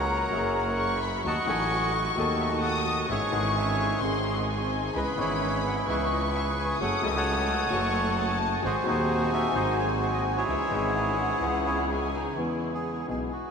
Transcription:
Already playing: double bass C#2, grand piano C#2 C#3 F#3 A#3 C#4 G#4, string section A#3 F#4 G#4, bandoneon A#4 C#5 F#5, violin section A#5
0.31 double bass F#1, grand piano F#2 F#3 A#3 C#4, string section A#3 F#4 G#4
0.35 grand piano G#4
0.79 violin section C#6
1.01 violin section B5
1.24 double bass D#2, grand piano D#2 D#3 F#3 A3 D#4 A4, string section D#4 F#4 A4, bandoneon D#5 F#5 A5, violin section C#6
1.45 grand piano A1 A2 F#3 A3 D#4 A4, double bass A1, string section D#4 F#4 A4, bandoneon G#5
1.50 bandoneon D#5
1.95 bandoneon F#5
2.16 double bass D#2, grand piano D#2 D#3 F#3 A3 D#4, string section D#4 F#4 A4, bandoneon F#4 A4 D#5
2.20 grand piano A4
2.40 bandoneon E5
2.62 bandoneon F#5, violin section D#6
2.86 bandoneon D#5
3.08 grand piano G#1 G#2 E3 G#3 C#4 G#4, double bass G#1, string section C#4 E4 G#4, bandoneon G#4 C#5 E5, violin section C#6
3.30 grand piano G#1 G#2 E3 G#3 C#4, double bass G#1, string section C#4 E4 G#4, bandoneon F#5
3.34 grand piano G#4
3.56 bandoneon C#5 E5 G#5
3.99 grand piano G#1 G#2 D#3 G#3 C4, double bass G#1, string section C4 D#4 G#4, violin section C6
4.04 grand piano G#4
4.49 violin section G#5
4.94 grand piano C#2 C#3 E3 B3 C#4 G#4, double bass C#2, string section C#4 E4 B4, bandoneon G#4 B4 D#5, violin section B5
5.16 grand piano G#1 G#2 E3 B3 C#4 G#4, double bass G#1, string section C#4 E4 B4, bandoneon C#5
5.20 bandoneon E4 G#4
5.66 bandoneon F#5
5.86 grand piano C#2 C#3 E3 B3 C#4, double bass C#2, string section C#4 E4 B4, violin section C#6
5.90 grand piano G#4, bandoneon G#4 B4 E5
6.13 bandoneon D#5
6.36 bandoneon E5
6.59 bandoneon G#5
6.80 double bass F#1, grand piano F#2 F#3 A3 C#4 G#4, string section A3 F#4 G#4, bandoneon A4 C#5 F#5, violin section D#6
7.02 double bass C#2, grand piano C#2 C#3 F#3 A3 C#4 A4, string section A3 F#4 G#5
7.06 bandoneon E5
7.17 bandoneon A4 C#5 F#5
7.70 double bass F#1, grand piano F#2 F#3 A3 C#4 A4, string section A3 F#4 A4, violin section C#6
8.16 violin section A5
8.62 grand piano G#1 G#2 F#3 C4 D#4 G#4, double bass G#1, string section C4 F#4 G#4, bandoneon F#4 C5, violin section G#5
8.66 bandoneon D#5
8.84 grand piano D#1 D#2 F#3 C4 D#4, double bass D#2, string section C4 F#4 G#4, bandoneon D#4 F#4
8.88 grand piano G#4, bandoneon C5
9.34 bandoneon E5
9.53 double bass G#1, grand piano G#1 G#2 F#3 C4 D#4, string section C4 F#4 G#4, bandoneon F#4 C5 D#5
9.57 grand piano G#4
9.79 bandoneon C#5
10.02 bandoneon C5
10.14 bandoneon D#5
10.37 bandoneon E4 G#4 C#5
10.48 double bass C#2, grand piano C#2 C#3 E3 G#3 C#4 G#4, string section C#4 E4 G#4, violin section E5
10.69 grand piano G#1 G#2 E3 G#3 C#4, double bass G#1, string section C#4 E4 G#4
10.73 grand piano G#4
10.93 violin section F#5
11.40 double bass C#2, grand piano C#2 C#3 E3 G#3 C#4, string section C#4 E4 G#4
11.44 grand piano G#4
11.67 bandoneon B3
11.90 violin section G#5
12.03 bandoneon C#4
12.15 bandoneon D#4
12.35 double bass E2, grand piano E2 E3 G#3 B3, bandoneon E4
12.39 grand piano G#4
12.74 bandoneon G#4
13.08 grand piano B1 B2 E3 G#3 B3 G#4, double bass B1, bandoneon G#4
13.32 bandoneon F#4

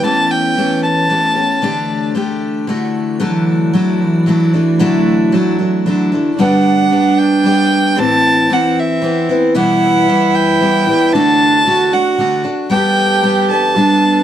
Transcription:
Already playing: ambient pad E3 G4
0.02 steel-string acoustic guitar E3 A3 C#4 G4, ambient pad A3 C#5, fiddle A5
0.31 fiddle G5
0.57 steel-string acoustic guitar E3 A3 C#4 G4
0.83 fiddle A5
1.09 steel-string acoustic guitar E3 A3 C#4 G4
1.35 steel-string acoustic guitar A3 C#4 G4
1.62 steel-string acoustic guitar D3 A3 D4 G4
2.15 steel-string acoustic guitar D3 A3 D4 G4
2.67 steel-string acoustic guitar D3 A3 E4 F#4
3.20 steel-string acoustic guitar D3 F#3 A3 D4 E4, cello E3, ambient pad E3 A3 F#4 D5
3.73 cello F#3, steel-string acoustic guitar F#3 A3 D4 E4
3.99 cello E3
4.26 steel-string acoustic guitar F#3 A3 D4 E4
4.53 steel-string acoustic guitar A3 D4 E4
4.79 steel-string acoustic guitar D3 F#3 A3 D4 E4, cello A3
5.32 steel-string acoustic guitar F#3 A3 D4 E4, cello F#3
5.58 steel-string acoustic guitar A3 D4 E4
5.86 cello D3, steel-string acoustic guitar F#3 A3 D4 E4
6.12 steel-string acoustic guitar A3 D4 E4
6.37 steel-string acoustic guitar G2 D3 G3 B3 D4 G4, cello D4, fiddle F#5
6.91 steel-string acoustic guitar G3 B3 D4 G4
7.18 fiddle G5
7.44 steel-string acoustic guitar G3 B3 D4 G4
7.96 steel-string acoustic guitar A2 E3 C4 E4, cello C4, fiddle A5
8.49 steel-string acoustic guitar E3 C4 E4, cello C4, fiddle F#5
8.79 fiddle E5
9.02 steel-string acoustic guitar E3 B3 C4 E4
9.29 steel-string acoustic guitar B3 C4 E4
9.54 steel-string acoustic guitar E2 B2 E3 G3 B3 E4, cello E4, fiddle F#5
10.08 steel-string acoustic guitar E3 G3 B3 E4
10.35 fiddle G5
10.60 steel-string acoustic guitar E3 G3 B3 E4
10.87 steel-string acoustic guitar E3 G3 B3 E4
11.13 steel-string acoustic guitar D3 A3 D4 F#4, cello D4, fiddle A5
11.65 steel-string acoustic guitar D3 A3 D4 F#4, cello F#4
11.91 steel-string acoustic guitar A3 D4 F#4, fiddle F#5
12.18 steel-string acoustic guitar D3 A3 D4 F#4
12.44 steel-string acoustic guitar A3 D4 F#4
12.70 steel-string acoustic guitar G3 B3 D4 A4, ambient pad G3 B3 A4 D5, cello G4, fiddle G5
13.22 steel-string acoustic guitar G3 B3 D4 A4
13.50 steel-string acoustic guitar B3 D4 A4, fiddle A5
13.76 steel-string acoustic guitar G3 B3 D4 A4, cello D4

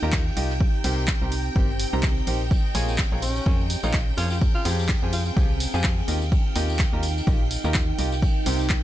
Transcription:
Already playing: ambient pad D#4 G4 F5 A#5, string machine G5
0.03 fm bass D#2, upright piano D#3 F4 G4 A#4 D#5 A#5
0.12 kick, snare, clap, ride
0.37 fm bass C2, upright piano F4 G4 A#4 D#5 G5, open hi-hat, ride
0.50 snare
0.60 ambient pad C4, kick, ride
0.84 fm bass C2, upright piano C3 D#4 G4 A#4 C5 G5, open hi-hat
1.08 kick, snare, clap, ride
1.15 ambient pad D#5
1.21 fm bass C2, upright piano C3 D#4 G4 A#4 C5 A#5, ride
1.32 open hi-hat, ride
1.56 fm bass G1, upright piano C3 D#4 G4 A#4 C5 G5, kick, ride
1.80 open hi-hat, ride
1.93 fm bass C2, upright piano C3 D#4 G4 A#4 C5 A#5
2.03 kick, snare, clap, ride
2.17 ride
2.27 fm bass A#1, upright piano D#4 G4 A#4 C5 G5, open hi-hat, ride
2.51 ambient pad C#4, kick, ride, tambourine
2.65 ride
2.72 fm bass A#1, upright piano A#3 F4 G#4 A#4 C#5 G#5, ambient pad G#4, snare, open hi-hat, ride, tambourine
2.88 ride, tambourine
2.98 kick, snare, clap, ride
3.12 fm bass A#1, upright piano A#3 F4 G#4 A#4 C#5 A#5, ride
3.22 tenor saxophone C#4, open hi-hat, ride, tambourine
3.36 ambient pad F5, ride, tambourine
3.45 fm bass F2, upright piano A#3 F4 G#4 A#4 C#5 G#5, kick, ride, tambourine
3.70 open hi-hat, ride, tambourine
3.83 fm bass A#1, upright piano A#3 F4 G#4 A#4 C#5 A#5, tenor saxophone D#4, tambourine
3.93 kick, snare, clap, ride
4.17 fm bass F2, upright piano F3 F4 G#4 A#4 C#5 G#5, tenor saxophone F4, open hi-hat, ride, tambourine
4.30 tenor saxophone F4, snare, tambourine
4.41 ambient pad C4, kick, ride, tambourine
4.55 tenor saxophone F4
4.65 fm bass F2, upright piano F3 F4 G4 G#4 C5 G5, open hi-hat, tambourine
4.79 tambourine
4.89 kick, snare, clap, ride
5.03 fm bass F2, upright piano F3 F4 G4 G#4 C5 G#5, ride
5.12 tenor saxophone F4, open hi-hat, ride, tambourine
5.17 ambient pad G5
5.25 tenor saxophone F4, tambourine
5.37 fm bass C2, upright piano F3 F4 G4 G#4 C5 G5, kick, ride, tambourine
5.60 open hi-hat, ride, tambourine
5.74 fm bass F2, upright piano F3 F4 G4 G#4 C5 G#5, tambourine
5.84 kick, snare, clap, ride
5.98 ride
6.08 fm bass D#2, upright piano D#3 F4 G4 A#4 D#5 G5, ambient pad D#4, open hi-hat, ride, tambourine
6.22 tambourine
6.32 kick, ride, tambourine
6.44 ambient pad A#4, ride
6.55 fm bass D#2, upright piano D#3 F4 G4 A#4 D#5 G5, snare, open hi-hat, ride, tambourine
6.69 ride, tambourine
6.79 kick, snare, clap, ride, tambourine
6.93 fm bass D#2, upright piano D#3 F4 G4 A#4 D#5 A#5, ride
7.02 open hi-hat, ride, tambourine
7.17 ride, tambourine
7.27 fm bass A#1, upright piano D#3 F4 G4 A#4 D#5 G5, kick, ride, tambourine
7.51 open hi-hat, ride, tambourine
7.64 fm bass D#2, upright piano D#3 F4 G4 A#4 D#5 A#5, tambourine
7.74 kick, snare, clap, ride, tambourine
7.98 fm bass C2, upright piano F4 G4 A#4 D#5 G5, open hi-hat, ride, tambourine
8.12 snare, tambourine
8.22 ambient pad C4, kick, ride, tambourine
8.46 fm bass C2, upright piano C3 D#4 G4 A#4 C5 G5, open hi-hat, tambourine
8.59 tambourine
8.70 kick, snare, clap, ride

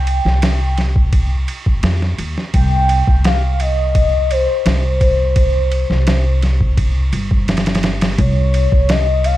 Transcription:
Already playing: upright bass C2, soft synth lead G5
0.07 ride
0.25 upright bass C2, snare
0.42 snare, ride
0.78 snare, ride
0.96 kick
1.13 kick, ride
1.48 ride
1.66 kick
1.83 upright bass F2, snare, ride
2.02 snare
2.18 upright bass D#2, ride
2.38 snare
2.54 upright bass C2, soft synth lead G5, kick, ride
2.89 ride
3.07 upright bass C2, kick
3.24 soft synth lead F5, snare, ride
3.60 soft synth lead D#5, ride
3.95 kick, ride
4.31 soft synth lead C5, ride
4.66 upright bass C2, snare, ride
5.01 soft synth lead C5, kick, ride
5.36 kick, ride
5.72 ride
5.90 upright bass C2, snare
6.07 snare, ride
6.42 snare, ride
6.61 kick
6.77 kick, ride
7.13 upright bass G1, ride
7.31 kick
7.48 snare, ride
7.57 snare, ride
7.66 snare, ride
7.75 snare, ride
7.83 snare, ride
8.01 snare, ride
8.18 upright bass C2, soft synth lead C#5, kick, ride
8.54 ride
8.72 upright bass C2, kick
8.89 soft synth lead D#5, snare, ride
9.24 soft synth lead F5, ride

